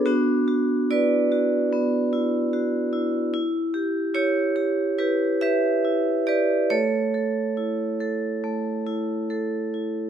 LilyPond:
\new Staff \with { instrumentName = "Vibraphone" } { \time 4/4 \key a \mixolydian \tempo 4 = 70 << { <d' fis'>4 <b' d''>2~ <b' d''>8 r8 | r4 <g' cis''>4 <g' b'>8 <b' e''>4 <b' d''>8 | <a' cis''>2. r4 | } \\ { b8 fis'8 e'8 fis'8 b8 e'8 fis'8 e'8 | e'8 g'8 e'8 g'8 e'8 g'8 e'8 g'8 | a8 a'8 e'8 a'8 a8 e'8 a'8 e'8 | } >> }